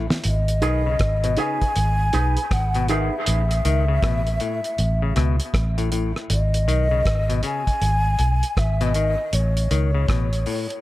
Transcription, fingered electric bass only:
0.25 0.63 G#1 medium
0.63 0.98 B1 medium
1.00 1.35 G#1 medium
1.76 2.11 G#1 medium
2.14 2.36 B1 loud
2.51 3.09 G#1 medium
3.28 3.62 A1 loud
3.65 4.00 C#2 medium
4.03 4.38 A1 medium
4.79 5.13 A1 loud
5.17 5.38 C#2 loud
5.54 6.12 A1 medium
6.30 6.68 G#1 medium
6.68 7.03 B1 medium
7.06 7.41 G#1 medium
7.82 8.16 G#1 medium
8.19 8.41 B1 medium
8.57 9.15 G#1 medium
9.33 9.68 A1 loud
9.71 10.06 C#2 medium
10.09 10.44 A1 medium

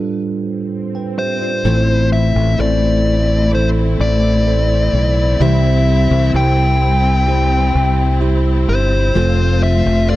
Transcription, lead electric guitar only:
1.19 2.08 C5 medium
2.13 2.56 E5 medium
2.61 3.50 D5 medium
3.55 3.67 C5 medium
4.01 5.45 D5 medium
5.42 6.31 E5 medium
6.36 8.19 G5 medium
8.69 9.63 C5 medium
9.63 10.09 E5 medium
10.10 10.16 D5 medium

